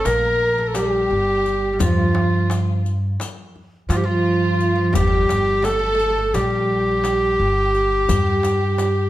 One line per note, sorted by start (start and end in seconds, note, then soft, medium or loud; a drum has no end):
0.05 1.06 A#1 medium
0.05 0.58 A#3 medium
0.05 0.69 A#4 loud
0.05 0.75 A#4 medium
0.05 riq medium
0.05 darbuka tek medium
0.40 darbuka ka soft
0.58 0.75 A3 medium
0.67 0.77 A4 medium
0.75 1.72 G3 medium
0.75 1.80 G4 medium
0.75 riq soft
0.75 darbuka tek medium
1.11 1.76 G1 medium
1.45 riq soft
1.45 darbuka ka soft
1.73 1.80 G3 soft
1.79 3.15 G2 loud
1.79 2.80 F3 medium
1.79 2.85 F4 medium
1.79 2.81 F4 medium
1.79 riq medium
1.79 darbuka dum medium
2.15 darbuka tek medium
2.50 riq soft
2.50 darbuka tek medium
2.85 riq soft
2.85 darbuka ka soft
3.20 riq medium
3.20 darbuka tek medium
3.56 darbuka ka soft
3.89 4.90 G2 medium
3.89 4.02 F3 medium
3.89 4.02 F4 medium
3.89 3.98 F4 medium
3.89 riq soft
3.89 darbuka tek medium
3.97 4.07 G4 medium
4.03 4.74 F3 medium
4.03 4.90 F4 medium
4.03 4.96 F4 medium
4.59 riq soft
4.59 darbuka ka soft
4.76 4.94 F3 medium
4.93 5.28 G1 medium
4.93 4.99 G3 medium
4.93 5.64 G4 medium
4.93 5.66 G4 loud
4.93 riq medium
4.93 darbuka dum loud
4.99 5.07 A3 medium
5.07 5.62 G3 medium
5.29 6.30 G1 medium
5.29 riq soft
5.29 darbuka tek medium
5.62 5.69 A3 medium
5.62 6.35 A4 loud
5.62 6.34 A4 medium
5.62 riq soft
5.62 darbuka tek medium
5.71 5.78 A3 medium
5.79 5.85 A3 medium
5.86 5.93 A3 medium
5.95 6.02 A3 medium
5.99 6.09 A3 medium
5.99 riq soft
5.99 darbuka ka soft
6.10 6.17 A3 medium
6.18 6.25 A3 medium
6.34 7.35 A#1 medium
6.34 9.10 G3 medium
6.34 9.10 G4 loud
6.34 9.10 G4 medium
6.34 riq soft
6.34 darbuka tek medium
6.69 darbuka ka soft
7.04 riq soft
7.04 darbuka tek medium
7.40 8.05 G1 medium
7.74 riq soft
7.74 darbuka ka soft
8.09 9.10 G2 loud
8.09 riq medium
8.09 darbuka dum medium
8.43 riq soft
8.43 darbuka tek medium
8.78 riq soft
8.78 darbuka tek medium